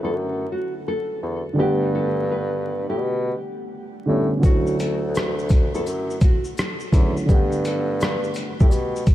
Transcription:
Already playing: D3 F#3 A3 C#4 E4
0.03 E2 A4
0.15 F#2
0.52 F#4
0.88 A4
1.22 E2
1.53 D3 G3
1.58 G2 A3 B3 G4
1.62 F#5
1.95 A4
2.31 B4
2.89 A2 G4
3.01 B2
4.06 A2 D3 G3 A3 B3
4.10 C#4
4.39 D3 F#3
4.43 D2 A3 C#4 F#4, kick, maracas, shaker
4.48 E4
4.67 shaker
4.79 A4, closed hi-hat, maracas, shaker
5.15 B4, cross-stick, shaker, maracas
5.39 shaker
5.49 kick, closed hi-hat, maracas, shaker
5.74 E2 A4, shaker
5.87 F#2, maracas, shaker
6.10 shaker
6.21 F#4, kick, closed hi-hat, maracas, shaker
6.45 shaker
6.58 A4, cross-stick, maracas, shaker
6.80 shaker
6.92 E2 D3 F#3 A3 C#4, kick, closed hi-hat, maracas, shaker
6.96 E4
7.17 shaker
7.25 D3 G3, kick, maracas
7.29 G2 A3 B3 G4, shaker
7.34 F#5
7.52 shaker
7.65 A4, closed hi-hat, maracas, shaker
8.01 B4, cross-stick, shaker, maracas
8.24 shaker
8.34 closed hi-hat, maracas, shaker
8.60 A2 G4, kick, shaker
8.71 B2, maracas, shaker
8.96 shaker
9.06 kick, closed hi-hat, maracas, shaker

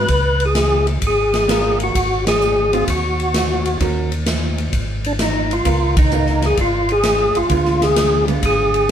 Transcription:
0.00 B4
0.08 C#2, kick, ride
0.40 ride
0.46 G#4
0.55 snare, hi-hat pedal, ride
0.87 ride
1.02 G#1, kick, ride
1.07 G#4
1.34 snare, ride
1.48 B3 F4 A#4, snare, hi-hat pedal, ride
1.80 F#4, ride
1.95 G#1, kick, ride
2.27 G#4, snare, ride
2.41 hi-hat pedal
2.73 F#3 C4 F4, ride
2.88 D#2 F#4, kick, ride
3.20 ride
3.34 snare, hi-hat pedal, ride
3.65 ride
3.80 D#2 D#3 C#4 F#4 A#4, kick, ride
4.12 ride
4.26 snare, hi-hat pedal, ride
4.58 ride
4.73 G#1, kick, ride
5.04 D4, ride
5.19 D#4, snare, hi-hat pedal, ride
5.51 F4, ride
5.65 C#2 B3 F4 A#4, kick, ride
5.97 D#4, kick, ride
6.11 B3 F4 A#4, hi-hat pedal
6.26 snare
6.42 snare, ride
6.46 G#4
6.57 G#1 F4, kick, ride
6.89 G#4, ride
7.03 snare, hi-hat pedal, ride
7.35 G#1 F4, ride
7.50 D2 D3 G#3 B3 F4, kick, ride
7.65 snare
7.81 G#4, snare, ride
7.96 snare, hi-hat pedal, ride
8.28 D3 G#3 B3 F4, ride
8.43 G#1 G#4, kick, ride
8.74 ride

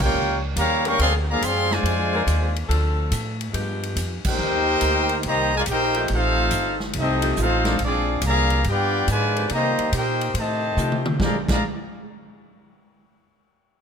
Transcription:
Already playing: C2
0.02 A#3 C#4 F4 G4 A#4 C#5 G5
0.14 C#2
0.56 D#2 C#3 G3 A#3 G4 C#5 F5 A#5, hi-hat pedal, ride
0.83 G3 G#3 A#3 C4 D4 A#4, ride
0.87 C#4 A#4 F5 G5 C#6
0.99 D2 F3 G#3 C4 G#4 D5 F5 C6, ride
1.30 D3 F3 A#3 G#4 D5 F5 A#5
1.41 F#2 F3 G#3 C4 G#4 D5 F5 C6, hi-hat pedal, ride
1.71 D3 F3 G#3 F4 C5 D5 G#5, snare
1.83 F2, ride
2.12 G#3 C4 D4 A#4
2.27 D#2, hi-hat pedal, ride
2.56 ride
2.68 D2 F3 C4 D4 A4, ride
3.11 A2, hi-hat pedal, ride
3.41 ride
3.51 G2 F3 G#3 B3 G4, ride
3.83 ride
3.96 F2, hi-hat pedal, ride
4.25 A#3 D#4 G4 G5, muted upright bass stroke, kick, crash
4.29 A#4 C5
4.39 D#2
4.81 D2, hi-hat pedal, ride
5.09 ride
5.23 C2 D#3 G3 A#3, ride
5.28 G4 C5 D#5 A#5
5.56 G#3 F4 A#4 D5 G#5
5.66 A#1 D#4 G4, hi-hat pedal, ride
5.70 A#3 D#4 A#4 C5 G5
5.94 F3 A3 D#4 G4, ride
6.08 A1, ride
6.13 A3 C4 D#4 F4 A4 C5 F5
6.51 G1, hi-hat pedal, ride
6.80 snare
6.93 C2, ride
6.98 A3 C4 D#4 G4 A4 D#5
7.22 F3 A3 D#4 G4, ride
7.36 A1 A3 F4, hi-hat pedal
7.41 C4 D#4 A4 C5 F5
7.65 D3 A#3 C4 D4, snare, ride
7.79 A#1, ride
7.84 F3 G#3 C4 D4 F4 G#4 D5
8.22 C2, hi-hat pedal, ride
8.26 D3 F3 A#3 G#4 D5 F5 A#5
8.50 ride
8.64 G2, ride
8.69 B3 D4 F4 G4 B4 D5 G5
9.07 G#2 D3 G#3 F4 B4 D5 G#5, hi-hat pedal, ride
9.12 F3
9.35 D#3 A#3 C4 G4, ride
9.49 C3 D#3 A#3 A#5, ride
9.54 G3 G4 C5 D#5
9.78 muted upright bass stroke, ride
9.92 A#2 A#3 D#4 G4, hi-hat pedal, ride
9.97 D#4 A#4 C5 G5
10.21 ride
10.34 A2 C3 D#3 A3, ride
10.39 G4 C5 D#5 A5
10.77 C3 F3 A3 D#4 G4, hi-hat pedal, mid tom
10.92 mid tom
11.06 mid tom
11.20 A#1 A#2 D3 F3 G#3 C4 D4 G4 G#4 D5 F5 A#5, kick, snare
11.46 A#1 A#2 F3 G#3 D4, kick, snare, crash
11.51 G#4 D5 F5 A#5

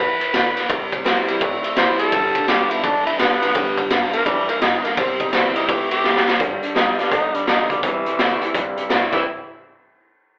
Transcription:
Already playing: E2 E3 B4
0.21 muted upright bass stroke, ride
0.34 D2 D3, snare, ride
0.57 muted upright bass stroke, snare, ride
0.69 C2 C3 G3, kick, ride
0.92 C3 G3, muted upright bass stroke, kick, ride
1.04 A1 C3 E3 G3 C4 E4, snare, ride
1.27 C3 G3, muted upright bass stroke, ride
1.41 G1 G2 C3 A3, kick, ride
1.63 C3 A3, muted upright bass stroke, ride
1.76 F1 C3 E3 G3 C4 E4 C5, snare, ride
1.99 C3 G3 A4, muted upright bass stroke, ride
2.12 G1 G2 D3 G3, kick, ride
2.35 G2 D3, muted upright bass stroke, kick, ride
2.47 A1 G2 D3 G3 B3 F4 G4, snare, ride
2.70 G2 D3 B3 E4 F4, muted upright bass stroke, ride
2.83 B1 G2 D3 E3 D4, kick, ride
3.06 G2 E3 E4, muted upright bass stroke, ride
3.19 E2 G2 D3 G3 B3 F4, snare, ride
3.41 G2 D3 B3 F4, muted upright bass stroke, snare, ride
3.54 D2 G2 D3 G3, kick, ride
3.77 G2 D3, muted upright bass stroke, kick, ride
3.90 G2 D3 G3 B3 F4, snare, ride
4.13 G2 D3 A#3 B3 F4, muted upright bass stroke, ride
4.25 F2 G2 E3 G3, kick, ride
4.49 G2 E3 A#3, muted upright bass stroke, ride
4.61 G2 B2 D3 D#4, snare, ride
4.84 G2 D3 A#3, muted upright bass stroke, snare, ride
4.97 C2 C3 G3 C4, kick, ride
5.20 C3 G3 D#4, muted upright bass stroke, kick, ride
5.33 D2 C3 E3 G3 C4 E4, snare, ride
5.56 C3 G3 D#4, muted upright bass stroke, ride
5.68 C2 C3 E3 A3 G4, kick, ride
5.91 C3 A3 G4, muted upright bass stroke, ride
6.04 A1 C3 F3 G3, snare
6.16 snare
6.27 C3 G3, muted upright bass stroke, snare
6.39 G1 G2 D3 G3, kick, closed hi-hat
6.63 G2 D3, muted upright bass stroke, closed hi-hat
6.75 B1 G2 E3 G3 B3 D#4 F4, snare, closed hi-hat
6.98 G2 D3 G3, muted upright bass stroke, snare, closed hi-hat
7.11 A1 G2 D3 D#4, kick, snare, closed hi-hat
7.34 G2 D3 G3, muted upright bass stroke, closed hi-hat
7.46 B1 G2 E3 G3 B3 D#4 F4, snare, closed hi-hat
7.69 G2 D3 G3 B3 F4, muted upright bass stroke, kick, closed hi-hat
7.83 C2 C3 E3 G3, kick, closed hi-hat
8.06 C3 G3, muted upright bass stroke, closed hi-hat
8.18 D2 C3 E3 G3 A3 C4 E4, snare, closed hi-hat
8.41 C3 G3 C4 E4, muted upright bass stroke, closed hi-hat
8.54 E2 G2 C3 G3, kick, closed hi-hat
8.76 C3 G3, muted upright bass stroke, closed hi-hat
8.89 G2 C3 E3 G3 A3 C4 E4, snare, closed hi-hat
9.12 C2 C3 E3 G3 C4 E4, kick, crash

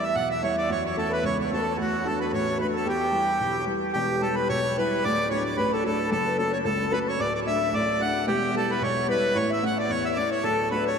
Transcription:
Already playing: E2 B3 E4 D5
0.02 E5
0.15 B1 F#5
0.30 E5
0.42 G3 B3 E4 C#5
0.57 D5
0.69 F#2 C#5
0.85 C#5
0.96 A3 C#4 F#4 A4
1.09 B4
1.23 C#2 C#5
1.38 C#5
1.51 A3 C#4 F#4 A4
1.77 D2 F#4
2.04 F#3 A3 D4 A4
2.19 B4
2.31 A1 C#5
2.47 C#5
2.58 F#3 A3 D4 B4
2.73 A4
2.86 E2 G4
3.12 G3 B3 E4
3.40 B1
3.66 G3 B3 E4
3.93 E1 E2 G4
4.21 G3 B3 E4 A4
4.34 B4
4.49 B1 C#5
4.77 G3 B3 E4 B4
5.04 D1 D2 D5
5.30 F#3 A3 D4 C#5
5.45 D5
5.57 A1 B4
5.72 A4
5.83 F#3 A3 D4 A4
6.11 F#1 F#2 A4
6.26 B4
6.38 F#3 A3 C#4 A4
6.52 C#5
6.65 C#2 A4
6.91 F#3 A3 C#4 B4
7.08 C#5
7.19 D1 D2 D5
7.35 D5
7.45 F#3 A3 D4 E5
7.73 A1 D5
8.00 F#3 A3 D4 F#5
8.27 E1 E2 G4
8.54 G3 B3 E4 A4
8.70 B4
8.81 B1 C#5 E5
8.86 C#5
9.08 G3 B3 E4 B4
9.34 A1 A2 C#5
9.50 E5
9.62 A3 C#4 E4 F#5
9.77 D5
9.89 E2 C#5
10.05 E5
10.16 A3 C#4 E4 D5
10.31 C#5
10.43 D1 D2 A4
10.71 A3 D4 F#4 B4
10.87 C#5

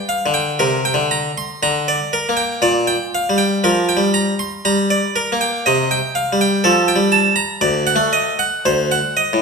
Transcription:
0.09 F5
0.26 D3
0.34 G5
0.59 C3 A#4
0.85 G5
0.94 D3
1.11 A#5
1.38 C6
1.63 D3 A#5
1.88 D5
2.13 A#4
2.29 A#3
2.37 G5
2.62 A#2 D5
2.87 G5
3.15 F5
3.30 G3
3.38 G5
3.64 F3 A#4
3.89 G5
3.97 G3
4.14 A#5
4.39 C6
4.65 G3 A#5
4.90 D5
5.16 A#4
5.32 A#3
5.41 G5
5.66 C3 D#5
5.91 G5
6.15 F5
6.33 G3
6.41 G5
6.64 F3 A4
6.88 G5
6.96 G3
7.12 A5
7.36 A#5
7.61 D2 D5
7.87 F#5
7.96 A3
8.13 D#5
8.39 F#5
8.65 D2 C5
8.92 F#5
9.17 D#5
9.33 A2

